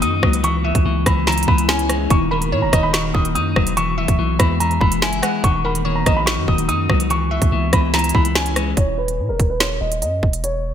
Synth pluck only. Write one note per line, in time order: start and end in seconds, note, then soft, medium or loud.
0.65 2.06 E5 medium
2.31 2.51 A#4 medium
2.52 2.72 C#5 medium
2.73 3.32 D#5 medium
3.98 5.19 E5 medium
5.22 5.42 F#5 medium
5.65 5.84 A#4 medium
5.85 6.05 C#5 medium
6.06 6.65 D#5 medium
7.31 8.73 E5 medium